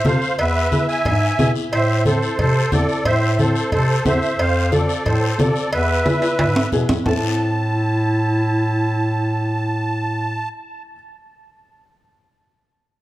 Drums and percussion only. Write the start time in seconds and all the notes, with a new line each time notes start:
0.05 high conga, low timbale, short guiro
0.22 short guiro
0.39 cowbell, high conga, long guiro
0.72 high conga, short guiro
0.89 short guiro
1.05 cowbell, high conga, low conga, long guiro
1.39 high conga, low timbale, short guiro
1.56 short guiro
1.72 cowbell, high conga, long guiro
2.05 high conga, short guiro
2.23 short guiro
2.39 cowbell, high conga, low conga, long guiro
2.72 high conga, low conga, short guiro
2.89 short guiro
3.05 cowbell, high conga, low conga, long guiro
3.39 high conga, short guiro
3.56 short guiro
3.72 cowbell, high conga, low conga, long guiro
4.05 high conga, low conga, low timbale, short guiro
4.22 short guiro
4.39 cowbell, high conga, long guiro
4.72 high conga, short guiro
4.89 short guiro
5.06 cowbell, high conga, low conga, long guiro
5.39 high conga, low timbale, short guiro
5.56 short guiro
5.73 cowbell, high conga, long guiro
6.06 high conga, high timbale, short guiro
6.22 high timbale, short guiro
6.39 cowbell, high conga, high timbale, long guiro
6.56 low timbale
6.72 low conga, short guiro
6.89 low conga, low timbale, short guiro
7.06 low conga, low timbale, long guiro